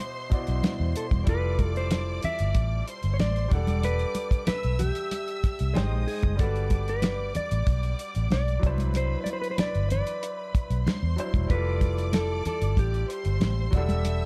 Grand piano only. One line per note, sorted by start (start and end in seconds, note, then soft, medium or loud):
0.00 0.26 B2 medium
0.00 0.27 E4 medium
0.00 0.29 F#4 soft
0.00 0.30 D5 medium
0.30 1.27 B2 medium
0.30 1.24 E4 soft
0.30 1.28 F#4 soft
0.30 1.28 D5 medium
1.24 3.46 G3 medium
1.24 3.47 E4 medium
1.28 3.48 F4 medium
1.28 3.49 A4 medium
3.48 5.70 G3 medium
3.48 5.71 D4 medium
3.53 5.73 A4 medium
3.53 5.72 F#5 medium
5.74 6.38 G#3 medium
5.74 6.39 D#4 medium
5.74 6.40 C5 medium
5.74 6.40 G5 medium
6.36 8.57 G3 medium
6.36 8.58 D4 medium
6.40 8.59 F#4 medium
6.40 8.60 B4 medium
8.59 11.12 F#3 medium
8.59 11.13 D4 medium
8.64 11.15 E4 medium
8.64 11.16 C5 medium
11.16 11.49 F#3 medium
11.16 11.50 D4 soft
11.16 11.48 E4 medium
11.16 11.51 C5 medium
11.47 13.67 G3 medium
11.47 13.69 E4 medium
11.51 13.70 F4 medium
11.51 13.71 A4 medium
13.71 13.78 F#3 medium
13.71 14.26 D4 medium
13.75 14.26 G3 medium
13.75 14.26 A4 medium
13.75 14.26 F#5 medium